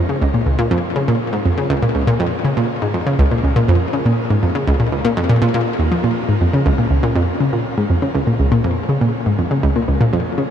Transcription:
0.09 0.18 C#3 medium
0.21 0.25 C#2 loud
0.34 0.37 A#2 medium
0.46 0.55 C#2 medium
0.59 0.62 A#2 loud
0.71 0.80 F2 loud
0.96 1.04 C#3 medium
1.08 1.14 A#2 medium
1.33 1.39 G#2 medium
1.45 1.49 F2 medium
1.58 1.66 C#3 medium
1.70 1.74 C#2 loud
1.82 1.86 A#2 medium
1.95 2.04 C#2 medium
2.07 2.11 A#2 loud
2.20 2.28 F2 medium
2.45 2.53 C#3 medium
2.57 2.63 A#2 medium
2.82 2.88 G#2 medium
2.94 2.98 F2 medium
3.06 3.15 C#3 medium
3.19 3.22 C#2 loud
3.31 3.35 A#2 medium
3.44 3.52 C#2 medium
3.56 3.59 A#2 loud
3.68 3.77 F2 loud
3.93 4.02 C#3 medium
4.06 4.11 A#2 medium
4.30 4.36 G#2 medium
4.43 4.46 F2 medium
4.55 4.64 C#3 medium
4.67 4.71 C#2 loud
4.80 4.83 A#2 medium
4.92 5.01 C#2 medium
5.05 5.08 A#2 loud
5.17 5.26 F2 loud
5.29 5.38 A#2 loud
5.42 5.48 A#2 loud
5.54 5.60 A#2 loud
5.79 5.88 D#2 medium
5.91 5.95 F3 medium
6.04 6.10 A#2 medium
6.29 6.35 G#2 medium
6.41 6.45 F2 medium
6.54 6.62 C#3 medium
6.66 6.69 C#2 loud
6.78 6.82 A#2 medium
6.91 6.99 C#2 medium
7.03 7.07 A#2 loud
7.15 7.24 F2 loud
7.40 7.49 C#3 medium
7.53 7.59 A#2 medium
7.77 7.83 G#2 medium
7.90 7.93 F2 medium
8.02 8.11 C#3 medium
8.15 8.18 C#2 loud
8.27 8.30 A#2 medium
8.39 8.48 C#2 medium
8.52 8.55 A#2 loud
8.64 8.73 F2 loud
8.89 8.98 C#3 medium
9.01 9.07 A#2 medium
9.26 9.32 G#2 medium
9.38 9.42 F2 medium
9.51 9.60 C#3 medium
9.63 9.67 C#2 loud
9.76 9.79 A#2 medium
9.88 9.97 C#2 medium
10.01 10.04 A#2 loud
10.13 10.22 F2 loud
10.38 10.47 C#3 medium

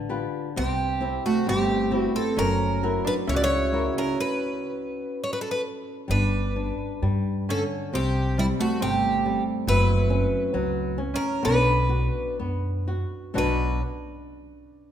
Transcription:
0.00 0.24 A1 medium
0.00 0.54 D3 medium
0.00 0.12 A3 medium
0.00 1.48 D4 medium
0.00 0.57 B4 medium
0.09 0.47 F4 soft
0.09 0.47 G4 soft
0.09 0.48 B4 soft
0.56 1.17 C2 medium
0.56 1.45 C3 medium
0.56 1.48 C4 medium
0.56 1.25 G4 medium
1.01 1.73 C4 soft
1.01 1.74 E4 soft
1.01 1.74 G4 soft
1.26 4.59 A3 medium
1.26 1.47 F#4 medium
1.47 2.06 G1 medium
1.47 2.34 G3 medium
1.47 1.93 C4 medium
1.47 1.97 G4 medium
1.91 2.15 B3 medium
1.91 2.28 C4 soft
1.91 2.28 E4 soft
1.91 2.28 G4 medium
1.97 2.15 F#4 medium
2.15 2.43 C4 medium
2.15 2.38 A4 medium
2.37 2.96 F#1 medium
2.37 3.25 F#3 medium
2.37 3.11 C#4 medium
2.37 3.07 A#4 loud
2.83 3.55 E4 soft
2.83 3.55 F#4 soft
2.83 3.56 A#4 medium
3.05 3.11 D4 medium
3.05 3.13 B4 medium
3.27 3.87 C#2 medium
3.27 4.16 C#3 medium
3.27 3.42 E4 medium
3.27 3.35 C#5 medium
3.34 5.78 F#4 medium
3.34 3.42 D5 medium
3.42 6.03 E4 medium
3.42 3.93 C#5 loud
3.73 4.09 E4 soft
3.73 4.10 F#4 soft
3.73 4.10 A#4 soft
3.97 6.17 C#4 medium
3.97 4.18 A#4 medium
4.20 5.21 B4 medium
5.24 5.32 C#5 medium
5.33 5.41 B4 medium
5.41 5.51 A4 medium
5.51 5.61 B4 medium
6.08 6.70 G1 medium
6.08 7.01 G3 medium
6.08 7.55 D4 medium
6.08 7.50 B4 medium
6.56 7.01 D4 soft
7.02 7.61 G2 medium
7.02 7.47 G3 medium
7.49 7.92 D3 soft
7.49 7.61 C#4 medium
7.49 7.62 A4 medium
7.93 8.50 C2 loud
7.93 8.80 C3 medium
7.93 8.80 C4 medium
7.93 8.39 G4 medium
8.38 8.44 G3 medium
8.38 8.80 G3 soft
8.38 8.45 E4 medium
8.59 11.92 A3 medium
8.59 8.82 F#4 medium
8.80 9.37 G1 medium
8.80 9.24 C3 medium
8.80 11.20 C4 medium
8.80 9.43 G4 medium
9.26 9.67 G3 medium
9.67 10.24 F#1 loud
9.67 10.53 F#3 medium
9.67 12.30 E4 medium
9.67 10.96 B4 loud
10.10 10.53 C#4 medium
10.54 11.13 C#2 medium
10.54 10.98 F#3 medium
10.98 11.42 C#4 medium
11.14 11.50 C#4 medium
11.14 11.43 A#4 medium
11.43 12.07 B1 loud
11.43 12.38 B3 medium
11.43 12.36 D4 medium
11.43 12.36 B4 medium
11.89 12.37 F#4 medium
12.40 13.03 F#2 medium
12.40 12.87 B3 medium
12.88 13.35 F#4 soft
13.34 13.80 B1 medium
13.34 13.79 B2 medium
13.34 13.79 F#3 soft
13.34 13.80 B3 soft
13.34 13.80 D4 medium
13.34 13.80 D4 soft
13.34 13.80 F#4 medium
13.38 13.81 B4 medium

